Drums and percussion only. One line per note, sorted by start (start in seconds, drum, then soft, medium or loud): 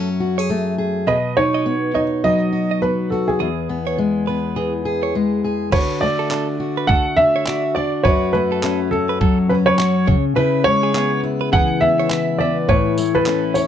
5.72 kick medium
5.72 crash medium
6.31 clap loud
6.89 kick loud
7.46 clap medium
8.05 kick medium
8.63 clap loud
9.21 kick loud
9.79 clap medium
10.08 kick medium
10.95 clap loud
11.53 kick loud
12.10 clap loud
12.69 kick medium
12.98 tambourine medium
13.26 clap loud
13.55 tambourine medium